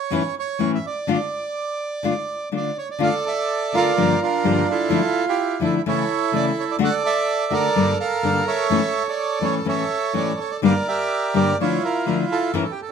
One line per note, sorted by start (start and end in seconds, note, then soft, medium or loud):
0.00 0.35 C#5 medium
0.10 0.21 A2 medium
0.10 0.21 E3 medium
0.10 0.21 A3 medium
0.10 0.21 C#4 medium
0.10 0.22 E4 medium
0.39 0.71 C#5 medium
0.59 0.77 A2 medium
0.59 0.77 E3 medium
0.59 0.77 A3 medium
0.59 0.77 C#4 medium
0.59 0.78 E4 medium
0.75 0.86 E5 medium
0.86 2.49 D5 medium
1.07 1.16 D3 medium
1.07 1.17 A3 medium
1.07 1.17 D4 medium
1.07 1.17 F4 medium
2.03 2.12 D3 medium
2.03 2.13 A3 medium
2.03 2.13 D4 medium
2.03 2.13 F4 medium
2.52 2.69 D3 soft
2.52 2.70 A3 medium
2.52 2.70 D4 medium
2.52 2.70 F4 medium
2.57 2.77 D5 medium
2.78 2.89 C#5 medium
2.91 3.01 D5 medium
2.99 3.09 D3 medium
2.99 3.10 A3 medium
2.99 3.10 D4 medium
2.99 3.10 F4 medium
2.99 3.25 A4 medium
2.99 3.75 D5 medium
3.04 3.14 F5 medium
3.26 3.94 A4 medium
3.26 3.76 E5 medium
3.73 3.90 D3 medium
3.73 3.91 A3 medium
3.73 3.90 D4 medium
3.73 3.91 F4 medium
3.73 4.21 F4 medium
3.73 4.23 A#4 medium
3.77 4.20 D5 medium
3.97 4.14 G2 medium
3.97 4.14 D3 medium
3.97 4.14 F3 medium
3.97 4.15 A#3 medium
3.97 4.15 D4 medium
3.97 4.15 G4 medium
4.22 4.88 D4 medium
4.22 4.69 F4 medium
4.22 4.67 A#4 medium
4.44 4.61 G2 medium
4.44 4.62 D3 medium
4.44 4.62 F3 soft
4.44 4.62 A#3 medium
4.44 4.62 D4 medium
4.44 4.62 G4 medium
4.70 5.26 E4 medium
4.70 5.59 F4 medium
4.70 5.25 A4 medium
4.89 4.99 D3 medium
4.89 5.00 F3 medium
4.89 5.00 A3 medium
4.89 5.00 D4 medium
4.89 5.00 E4 medium
5.27 5.82 E4 medium
5.27 5.61 G4 medium
5.60 5.78 D3 medium
5.60 5.78 F3 medium
5.60 5.78 A3 medium
5.60 5.79 D4 medium
5.60 5.79 E4 medium
5.64 5.74 A4 medium
5.86 6.03 C#3 medium
5.86 6.03 E3 medium
5.86 6.03 A3 medium
5.86 6.03 C#4 medium
5.86 6.03 E4 medium
5.86 6.77 E4 medium
5.86 6.77 A4 medium
5.86 6.31 C#5 medium
6.32 6.49 C#3 medium
6.32 6.50 E3 medium
6.32 6.50 A3 medium
6.32 6.50 C#4 medium
6.32 6.51 E4 medium
6.32 6.45 D5 medium
6.60 6.64 C#5 medium
6.71 6.76 D5 medium
6.79 6.88 D3 medium
6.79 6.88 A3 medium
6.79 6.88 D4 medium
6.79 6.89 F#4 medium
6.83 7.03 A4 medium
6.83 7.52 D5 medium
6.83 6.94 F#5 medium
7.04 7.52 A4 medium
7.04 7.54 E5 medium
7.50 7.68 D3 medium
7.50 7.68 A3 medium
7.50 7.68 D4 medium
7.50 7.68 F#4 medium
7.50 7.98 A4 medium
7.50 7.98 A#4 medium
7.50 7.97 D5 medium
7.76 7.92 G2 medium
7.76 7.92 D3 medium
7.76 7.92 G3 medium
7.76 7.93 A#3 medium
7.76 7.92 D4 medium
7.76 7.93 A4 medium
8.00 8.46 A4 medium
8.00 8.67 A#4 medium
8.00 8.44 F5 medium
8.23 8.40 G2 medium
8.23 8.40 D3 medium
8.23 8.40 G3 medium
8.23 8.40 A#3 medium
8.23 8.41 D4 medium
8.23 8.40 A4 medium
8.48 9.07 A4 medium
8.48 9.39 C#5 medium
8.48 9.03 E5 medium
8.70 8.79 A2 medium
8.70 8.79 E3 medium
8.70 8.80 A3 medium
8.70 8.80 C#4 medium
8.70 8.80 E4 medium
9.09 9.67 A4 medium
9.09 9.45 D5 medium
9.41 9.59 A2 medium
9.41 9.59 E3 medium
9.41 9.60 A3 medium
9.41 9.60 C#4 medium
9.41 9.60 E4 medium
9.41 9.55 C#5 medium
9.65 9.83 A2 medium
9.65 9.83 E3 medium
9.65 9.83 A3 medium
9.65 9.83 C#4 medium
9.65 9.83 E4 medium
9.65 10.61 A4 medium
9.65 10.39 C#5 medium
9.65 10.13 E5 medium
10.14 10.32 A2 medium
10.14 10.32 E3 medium
10.14 10.32 A3 medium
10.14 10.32 C#4 medium
10.14 10.32 E4 medium
10.14 10.39 D5 medium
10.40 10.51 C#5 medium
10.51 10.57 D5 medium
10.62 10.72 G2 medium
10.62 10.72 D3 medium
10.62 10.72 G3 medium
10.62 10.72 A#3 medium
10.62 10.72 D4 medium
10.62 10.73 G4 medium
10.62 10.87 A#4 medium
10.62 11.34 D5 medium
10.62 10.75 F5 medium
10.88 11.56 G4 medium
10.88 11.56 A#4 medium
10.88 11.37 E5 medium
11.34 11.52 G2 medium
11.34 11.52 D3 medium
11.34 11.52 G3 medium
11.34 11.53 A#3 medium
11.34 11.53 D4 medium
11.34 11.53 G4 medium
11.34 11.58 D5 medium
11.60 11.77 D3 medium
11.60 11.77 F3 medium
11.60 11.77 A3 medium
11.60 11.77 D4 medium
11.60 11.78 E4 medium
11.60 12.52 E4 medium
11.60 12.52 F4 medium
11.60 11.83 C#5 medium
11.85 12.05 A#4 medium
12.06 12.24 D3 medium
12.06 12.24 F3 medium
12.06 12.24 A3 medium
12.06 12.24 D4 medium
12.06 12.24 E4 medium
12.06 12.18 A#4 medium
12.32 12.55 A4 medium
12.54 12.63 A2 medium
12.54 12.63 E3 medium
12.54 12.63 A3 medium
12.54 12.63 C#4 medium
12.54 12.64 E4 medium
12.54 12.63 A#4 medium
12.63 12.72 A4 medium
12.71 12.81 G4 medium
12.82 12.91 A4 medium